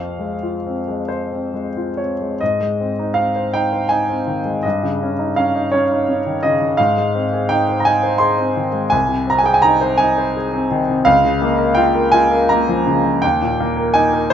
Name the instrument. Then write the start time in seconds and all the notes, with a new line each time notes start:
grand piano
Already playing: F2 C4 F5
0.19 G#3
0.43 F4
0.67 C4
0.88 G#3
1.08 C5
1.32 C4
1.54 G#3
1.77 F4
1.97 C4 C#5
2.21 G#3
2.41 G#2 D#5
2.61 G#3
2.80 C4
2.99 D#4
3.14 C4 F5
3.36 C5
3.54 D#4 G5
3.73 C5
3.89 D#4 G#5
4.09 C4
4.27 D#3
4.45 G#3
4.63 G2 D#5
4.83 C#3
5.03 C#4
5.19 D#4
5.36 C#4 F5
5.55 D#4
5.72 C#4 C#5
5.91 D#4
6.09 C#4
6.26 D#3
6.43 C#3 D#5
6.61 D#3
6.77 G#2 F5
6.98 G#3
7.15 C4
7.33 G#4
7.49 D#4 G5
7.69 C5
7.80 A#5
7.85 D#4 G#5
8.03 C5
8.18 G#4 C6
8.38 C4
8.56 D#3
8.73 G#3
8.90 C2 G#5
9.09 C3
9.27 C4 A#5
9.38 G#5
9.44 G#4 G5
9.54 G#5
9.62 D#4 A#5
9.81 C5
9.97 D#4 G#5
10.18 C5
10.37 G#4
10.54 C4
10.71 D#3
10.88 C3
11.05 C#2 F5
11.25 C#3
11.42 A#3
11.59 A#4
11.75 F4 G5
11.95 A#4
12.12 F4 G#5
12.31 A#4
12.49 A#3 A#5
12.69 F3
12.87 C#3
13.04 F3
13.22 D#2 G5
13.42 A#2
13.60 A#3
13.77 A#4
13.94 D#4 G#5
14.13 A#4
14.30 C5